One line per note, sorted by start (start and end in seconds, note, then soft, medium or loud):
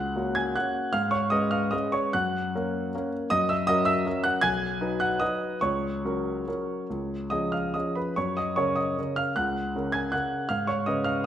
0.00 0.14 C#2 medium
0.00 0.31 F#5 medium
0.00 0.34 F#6 medium
0.16 0.52 A#3 soft
0.16 0.52 C#4 soft
0.16 0.52 F#4 soft
0.35 0.55 G#5 medium
0.35 0.55 G#6 medium
0.55 0.91 A#3 soft
0.55 0.91 C#4 soft
0.55 0.91 F#4 soft
0.55 0.92 F#5 medium
0.55 0.94 F#6 medium
0.93 1.31 G#2 medium
0.93 1.11 F5 medium
0.93 1.12 F6 medium
1.11 1.30 C#5 medium
1.11 1.31 C#6 medium
1.30 1.69 G#3 soft
1.30 1.69 C#4 soft
1.30 1.69 B4 soft
1.30 1.51 D#5 medium
1.30 1.51 D#6 medium
1.51 1.71 F5 medium
1.51 1.72 F6 medium
1.71 2.11 G#3 soft
1.71 2.11 C#4 soft
1.71 2.11 B4 soft
1.71 1.92 D#5 medium
1.71 1.93 D#6 medium
1.92 2.14 C#5 medium
1.92 2.14 C#6 medium
2.13 2.53 F#2 medium
2.13 3.08 F#5 medium
2.13 3.11 F#6 medium
2.55 2.89 A#3 soft
2.55 2.90 C#4 soft
2.55 2.90 A#4 soft
2.95 3.28 A#3 soft
2.95 3.28 C#4 soft
2.95 3.28 A#4 soft
3.30 3.67 F#2 medium
3.30 3.48 D#5 medium
3.30 3.49 D#6 loud
3.49 3.67 E5 medium
3.49 3.68 E6 medium
3.67 4.03 F#3 soft
3.67 4.03 C#4 soft
3.67 4.03 A#4 medium
3.67 3.86 D#5 medium
3.67 3.87 D#6 loud
3.85 4.22 E5 medium
3.85 4.25 E6 medium
4.06 4.40 F#3 soft
4.06 4.40 C#4 soft
4.06 4.40 A#4 medium
4.24 4.42 F#5 medium
4.24 4.43 F#6 loud
4.41 4.80 B1 medium
4.41 4.96 G#5 medium
4.41 5.00 G#6 loud
4.81 5.17 F#3 soft
4.81 5.17 D#4 soft
4.81 5.18 B4 soft
5.00 5.20 F#5 medium
5.00 5.21 F#6 medium
5.20 5.58 F#3 soft
5.20 5.58 D#4 soft
5.20 5.59 B4 soft
5.20 5.59 D#5 medium
5.20 5.62 D#6 medium
5.61 6.03 C#2 soft
5.61 7.28 C#5 medium
5.61 7.31 C#6 medium
6.05 6.44 F#3 soft
6.05 6.44 C#4 soft
6.05 6.44 A#4 soft
6.48 6.86 F#3 soft
6.48 6.86 C#4 soft
6.48 6.86 A#4 soft
6.90 7.30 C#2 soft
7.30 7.70 F3 soft
7.30 7.71 C#4 soft
7.30 7.71 G#4 soft
7.30 7.51 D#5 medium
7.30 7.53 D#6 medium
7.52 7.73 F5 medium
7.52 7.74 F6 medium
7.74 8.13 F3 soft
7.74 8.13 C#4 soft
7.74 8.14 G#4 soft
7.74 7.95 D#5 soft
7.74 7.96 D#6 medium
7.95 8.16 B4 soft
7.95 8.16 B5 medium
8.16 8.56 F#2 soft
8.16 8.36 C#5 medium
8.16 8.37 C#6 medium
8.37 8.56 D#5 medium
8.37 8.57 D#6 medium
8.56 8.94 C#3 soft
8.56 8.94 C#4 soft
8.56 8.94 A#4 soft
8.56 8.76 C#5 medium
8.56 8.77 C#6 medium
8.76 9.15 D#5 soft
8.76 9.17 D#6 medium
8.98 9.33 C#3 soft
8.98 9.33 C#4 soft
8.98 9.33 A#4 soft
9.16 9.35 F5 medium
9.16 9.36 F6 medium
9.36 9.73 C#2 soft
9.36 9.90 F#5 medium
9.36 9.94 F#6 medium
9.75 10.10 C#3 soft
9.75 10.10 C#4 soft
9.75 10.10 A#4 soft
9.92 10.12 G#5 medium
9.92 10.12 G#6 medium
10.12 10.46 C#3 soft
10.12 10.46 C#4 soft
10.12 10.47 A#4 soft
10.12 10.47 F#5 medium
10.12 10.49 F#6 medium
10.49 10.86 G#2 soft
10.49 10.67 F5 medium
10.49 10.67 F6 medium
10.67 10.86 C#5 medium
10.67 10.87 C#6 medium
10.86 11.22 C#3 soft
10.86 11.22 C#4 soft
10.86 11.23 B4 soft
10.86 11.05 D#5 medium
10.86 11.06 D#6 medium
11.04 11.24 F5 medium
11.04 11.25 F6 medium